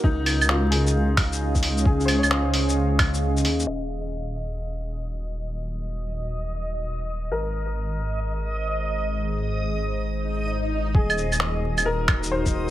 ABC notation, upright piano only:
X:1
M:4/4
L:1/16
Q:"Swing 16ths" 1/4=132
K:Ebdor
V:1 name="Upright piano"
[B,E]4 F A8- A2 z | A c d8- d2 z4 | e8- e2 z6 | z16 |
B8- B2 z6 | z16 | A8 B4 c4 |]